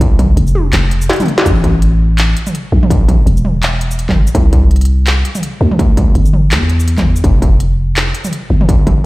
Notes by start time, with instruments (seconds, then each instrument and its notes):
Already playing: 808-style bass C2
0.01 kick, closed hi-hat
0.19 kick, closed hi-hat, mid tom
0.37 808-style bass F1, closed hi-hat
0.47 shaker
0.55 mid tom
0.73 808-style bass F1, clap, closed hi-hat
0.91 closed hi-hat
1.02 shaker
1.09 snare, closed hi-hat
1.13 closed hi-hat
1.16 closed hi-hat
1.20 closed hi-hat, mid tom, high tom, shaker
1.22 closed hi-hat
1.26 closed hi-hat
1.28 closed hi-hat
1.38 snare
1.46 808-style bass A1, kick, closed hi-hat, shaker
1.64 kick, closed hi-hat
1.82 closed hi-hat
2.18 clap, closed hi-hat
2.37 closed hi-hat
2.47 mid tom, shaker
2.55 closed hi-hat
2.72 808-style bass A#1
2.83 mid tom
2.90 kick, closed hi-hat
3.08 kick, closed hi-hat, mid tom
3.26 808-style bass E1, closed hi-hat
3.37 shaker
3.45 mid tom
3.63 clap, closed hi-hat
3.81 closed hi-hat
3.91 shaker
3.99 closed hi-hat
4.09 kick, clap, mid tom
4.16 808-style bass A1
4.27 shaker
4.35 808-style bass C2, kick, closed hi-hat
4.53 kick, closed hi-hat
4.71 closed hi-hat
4.76 closed hi-hat
4.81 closed hi-hat
4.85 closed hi-hat
5.07 clap, closed hi-hat
5.25 closed hi-hat
5.35 mid tom, shaker
5.43 closed hi-hat
5.61 808-style bass D2
5.71 mid tom
5.79 kick, closed hi-hat
5.97 kick, closed hi-hat, mid tom
6.15 808-style bass G1, closed hi-hat
6.26 shaker
6.33 mid tom
6.51 808-style bass E2, clap, closed hi-hat
6.69 closed hi-hat
6.80 shaker
6.88 closed hi-hat
6.98 kick, clap, mid tom, shaker
7.16 shaker
7.24 808-style bass F1, kick, closed hi-hat
7.42 kick, closed hi-hat
7.60 closed hi-hat
7.97 clap, closed hi-hat
8.14 closed hi-hat
8.25 mid tom, shaker
8.33 closed hi-hat
8.50 808-style bass G1
8.61 mid tom
8.69 kick, closed hi-hat
8.87 kick, closed hi-hat, mid tom